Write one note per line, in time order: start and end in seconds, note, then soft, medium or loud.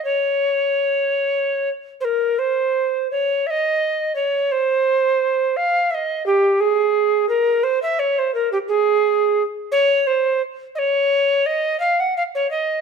0.04 1.70 C#5 medium
2.00 2.40 A#4 medium
2.00 2.05 C5 soft
2.39 3.10 C5 medium
3.11 3.48 C#5 medium
3.46 4.15 D#5 medium
3.46 3.51 E5 medium
4.15 4.53 C#5 medium
4.52 5.58 C5 medium
5.56 5.92 F5 medium
5.90 6.25 D#5 medium
5.90 5.95 E5 medium
6.26 6.62 G4 medium
6.60 7.28 G#4 medium
7.29 7.65 A#4 medium
7.63 7.82 C5 medium
7.82 8.01 E5 medium
7.99 8.20 C#5 medium
8.18 8.34 C5 medium
8.34 8.51 A#4 medium
8.52 8.58 G4 medium
8.68 9.43 G#4 medium
9.72 10.08 C#5 medium
10.07 10.41 C5 medium
10.75 11.47 C#5 medium
10.75 10.79 D#5 medium
11.46 11.79 D#5 medium
11.80 12.01 F5 medium
12.00 12.16 F#5 medium
12.17 12.23 F5 medium
12.35 12.50 C#5 medium
12.50 12.81 D#5 medium